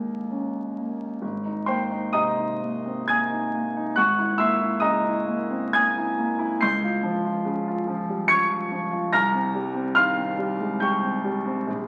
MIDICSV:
0, 0, Header, 1, 2, 480
1, 0, Start_track
1, 0, Key_signature, -4, "major"
1, 0, Tempo, 930233
1, 630, Time_signature, 3, 2, 24, 8
1, 1594, Tempo, 864553
1, 2554, Tempo, 934579
1, 3034, Tempo, 862069
1, 3994, Tempo, 831025
1, 5434, Tempo, 858369
1, 6499, End_track
2, 0, Start_track
2, 0, Title_t, "Grand piano"
2, 0, Program_c, 0, 0
2, 0, Control_c, 0, 64, 127
2, 0, Note_on_c, 0, 39, 54
2, 0, Note_on_c, 0, 56, 38
2, 0, Note_on_c, 0, 58, 38
2, 0, Note_on_c, 0, 70, 53
2, 0, Note_on_c, 0, 75, 55
2, 0, Note_on_c, 0, 79, 55
2, 0, Note_on_c, 0, 82, 74
2, 156, Note_on_c, 0, 61, 37
2, 295, Note_off_c, 0, 58, 0
2, 367, Note_off_c, 0, 75, 0
2, 367, Note_off_c, 0, 79, 0
2, 368, Note_off_c, 0, 70, 0
2, 385, Note_off_c, 0, 82, 0
2, 397, Note_on_c, 0, 58, 38
2, 537, Note_off_c, 0, 61, 0
2, 603, Note_off_c, 0, 39, 0
2, 628, Note_on_c, 0, 32, 52
2, 632, Note_off_c, 0, 58, 0
2, 639, Control_c, 0, 64, 0
2, 640, Note_off_c, 0, 56, 0
2, 728, Control_c, 0, 64, 127
2, 750, Note_on_c, 0, 63, 43
2, 858, Note_on_c, 0, 84, 77
2, 861, Note_on_c, 0, 58, 48
2, 865, Note_on_c, 0, 72, 64
2, 866, Note_on_c, 0, 79, 61
2, 939, Note_off_c, 0, 63, 0
2, 985, Note_on_c, 0, 63, 47
2, 1053, Note_off_c, 0, 58, 0
2, 1085, Note_off_c, 0, 72, 0
2, 1086, Note_off_c, 0, 79, 0
2, 1097, Note_on_c, 0, 87, 88
2, 1099, Note_off_c, 0, 84, 0
2, 1100, Note_on_c, 0, 48, 46
2, 1100, Note_on_c, 0, 82, 65
2, 1103, Note_on_c, 0, 75, 68
2, 1174, Note_off_c, 0, 63, 0
2, 1225, Note_on_c, 0, 63, 43
2, 1295, Note_off_c, 0, 48, 0
2, 1348, Note_on_c, 0, 58, 42
2, 1423, Note_off_c, 0, 63, 0
2, 1474, Note_on_c, 0, 60, 40
2, 1546, Note_off_c, 0, 58, 0
2, 1572, Note_off_c, 0, 82, 0
2, 1573, Note_off_c, 0, 75, 0
2, 1586, Note_off_c, 0, 87, 0
2, 1587, Note_on_c, 0, 92, 81
2, 1592, Note_on_c, 0, 58, 41
2, 1593, Note_on_c, 0, 87, 59
2, 1595, Note_off_c, 0, 60, 0
2, 1595, Note_on_c, 0, 80, 63
2, 1717, Note_on_c, 0, 63, 45
2, 1796, Note_off_c, 0, 58, 0
2, 1848, Note_on_c, 0, 58, 50
2, 1916, Note_off_c, 0, 63, 0
2, 1969, Note_on_c, 0, 63, 55
2, 2039, Note_off_c, 0, 58, 0
2, 2062, Note_off_c, 0, 32, 0
2, 2062, Note_off_c, 0, 87, 0
2, 2063, Note_off_c, 0, 80, 0
2, 2076, Note_on_c, 0, 90, 87
2, 2081, Note_off_c, 0, 92, 0
2, 2084, Note_on_c, 0, 32, 59
2, 2084, Note_on_c, 0, 78, 67
2, 2084, Note_on_c, 0, 85, 73
2, 2086, Note_off_c, 0, 63, 0
2, 2094, Control_c, 0, 64, 0
2, 2189, Control_c, 0, 64, 127
2, 2203, Note_on_c, 0, 64, 47
2, 2301, Note_off_c, 0, 78, 0
2, 2301, Note_off_c, 0, 85, 0
2, 2310, Note_on_c, 0, 88, 102
2, 2313, Note_off_c, 0, 90, 0
2, 2314, Note_on_c, 0, 58, 53
2, 2318, Note_on_c, 0, 84, 72
2, 2320, Note_on_c, 0, 76, 77
2, 2388, Note_off_c, 0, 64, 0
2, 2433, Note_on_c, 0, 64, 50
2, 2504, Note_off_c, 0, 58, 0
2, 2538, Note_off_c, 0, 76, 0
2, 2538, Note_off_c, 0, 84, 0
2, 2543, Note_on_c, 0, 87, 91
2, 2546, Note_on_c, 0, 49, 52
2, 2550, Note_off_c, 0, 88, 0
2, 2551, Note_on_c, 0, 75, 72
2, 2552, Note_on_c, 0, 82, 73
2, 2622, Note_off_c, 0, 64, 0
2, 2668, Note_on_c, 0, 64, 50
2, 2738, Note_off_c, 0, 49, 0
2, 2781, Note_on_c, 0, 58, 55
2, 2865, Note_off_c, 0, 64, 0
2, 2903, Note_on_c, 0, 60, 45
2, 2981, Note_off_c, 0, 58, 0
2, 3012, Note_off_c, 0, 75, 0
2, 3012, Note_off_c, 0, 82, 0
2, 3023, Note_off_c, 0, 87, 0
2, 3024, Note_on_c, 0, 92, 101
2, 3027, Note_on_c, 0, 58, 52
2, 3028, Note_off_c, 0, 60, 0
2, 3030, Note_on_c, 0, 80, 68
2, 3031, Note_on_c, 0, 87, 74
2, 3156, Note_on_c, 0, 64, 46
2, 3229, Note_off_c, 0, 58, 0
2, 3272, Note_on_c, 0, 58, 58
2, 3351, Note_off_c, 0, 64, 0
2, 3389, Note_on_c, 0, 64, 61
2, 3468, Note_off_c, 0, 58, 0
2, 3497, Note_off_c, 0, 80, 0
2, 3497, Note_off_c, 0, 87, 0
2, 3498, Note_off_c, 0, 32, 0
2, 3509, Note_on_c, 0, 96, 109
2, 3515, Note_off_c, 0, 64, 0
2, 3516, Note_off_c, 0, 92, 0
2, 3517, Note_on_c, 0, 37, 61
2, 3519, Note_on_c, 0, 84, 79
2, 3519, Note_on_c, 0, 91, 76
2, 3532, Control_c, 0, 64, 0
2, 3624, Control_c, 0, 64, 127
2, 3636, Note_on_c, 0, 65, 53
2, 3745, Note_on_c, 0, 53, 62
2, 3828, Note_off_c, 0, 65, 0
2, 3868, Note_on_c, 0, 65, 56
2, 3940, Note_off_c, 0, 53, 0
2, 3978, Note_on_c, 0, 49, 63
2, 4060, Note_off_c, 0, 65, 0
2, 4111, Note_on_c, 0, 65, 58
2, 4177, Note_off_c, 0, 49, 0
2, 4223, Note_on_c, 0, 53, 57
2, 4303, Note_off_c, 0, 65, 0
2, 4348, Note_on_c, 0, 55, 47
2, 4419, Note_off_c, 0, 53, 0
2, 4447, Note_off_c, 0, 84, 0
2, 4447, Note_off_c, 0, 91, 0
2, 4458, Note_on_c, 0, 97, 103
2, 4459, Note_on_c, 0, 53, 54
2, 4461, Note_on_c, 0, 85, 86
2, 4464, Note_on_c, 0, 92, 76
2, 4465, Note_off_c, 0, 96, 0
2, 4469, Note_off_c, 0, 55, 0
2, 4590, Note_on_c, 0, 65, 51
2, 4657, Note_off_c, 0, 53, 0
2, 4711, Note_on_c, 0, 53, 57
2, 4782, Note_off_c, 0, 65, 0
2, 4824, Note_on_c, 0, 65, 59
2, 4902, Note_off_c, 0, 53, 0
2, 4922, Note_off_c, 0, 85, 0
2, 4924, Note_off_c, 0, 92, 0
2, 4925, Note_off_c, 0, 37, 0
2, 4944, Note_off_c, 0, 97, 0
2, 4946, Note_on_c, 0, 36, 75
2, 4946, Note_on_c, 0, 94, 104
2, 4947, Note_off_c, 0, 65, 0
2, 4950, Note_on_c, 0, 89, 81
2, 4954, Note_on_c, 0, 82, 84
2, 4958, Control_c, 0, 64, 0
2, 5063, Control_c, 0, 64, 127
2, 5069, Note_on_c, 0, 60, 52
2, 5189, Note_on_c, 0, 55, 62
2, 5262, Note_off_c, 0, 60, 0
2, 5303, Note_on_c, 0, 60, 58
2, 5383, Note_off_c, 0, 55, 0
2, 5409, Note_off_c, 0, 89, 0
2, 5411, Note_off_c, 0, 82, 0
2, 5422, Note_on_c, 0, 89, 116
2, 5429, Note_on_c, 0, 51, 60
2, 5429, Note_on_c, 0, 77, 85
2, 5430, Note_off_c, 0, 94, 0
2, 5430, Note_on_c, 0, 84, 84
2, 5499, Note_off_c, 0, 60, 0
2, 5550, Note_on_c, 0, 60, 59
2, 5620, Note_off_c, 0, 51, 0
2, 5663, Note_on_c, 0, 55, 58
2, 5741, Note_off_c, 0, 60, 0
2, 5785, Note_on_c, 0, 56, 51
2, 5858, Note_off_c, 0, 55, 0
2, 5885, Note_off_c, 0, 77, 0
2, 5885, Note_off_c, 0, 84, 0
2, 5899, Note_on_c, 0, 91, 72
2, 5904, Note_off_c, 0, 89, 0
2, 5905, Note_on_c, 0, 79, 50
2, 5906, Note_on_c, 0, 55, 49
2, 5907, Note_off_c, 0, 56, 0
2, 5909, Note_on_c, 0, 85, 57
2, 6027, Note_on_c, 0, 60, 50
2, 6100, Note_off_c, 0, 55, 0
2, 6130, Note_off_c, 0, 79, 0
2, 6132, Note_off_c, 0, 85, 0
2, 6144, Note_off_c, 0, 91, 0
2, 6146, Note_on_c, 0, 55, 60
2, 6220, Note_off_c, 0, 60, 0
2, 6263, Note_on_c, 0, 60, 61
2, 6340, Note_off_c, 0, 55, 0
2, 6366, Note_off_c, 0, 36, 0
2, 6384, Note_on_c, 0, 34, 60
2, 6387, Note_off_c, 0, 60, 0
2, 6400, Control_c, 0, 64, 0
2, 6497, Control_c, 0, 64, 127
2, 6499, Note_off_c, 0, 34, 0
2, 6499, End_track
0, 0, End_of_file